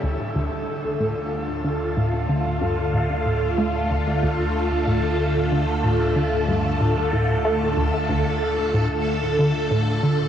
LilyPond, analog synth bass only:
\new Staff \with { instrumentName = "Analog synth bass" } { \clef bass \time 4/4 \key d \minor \tempo 4 = 93 d,8 d,8 r8 a,8 r8 d8 a,8 d8 | g,8 a,8 a,8 a8 d,8 d,8 r8 a,8 | r8 d8 a,8 d8 g,8 a,8 a,8 a8 | d,8 d,8 r8 a,8 r8 d8 a,8 d8 | }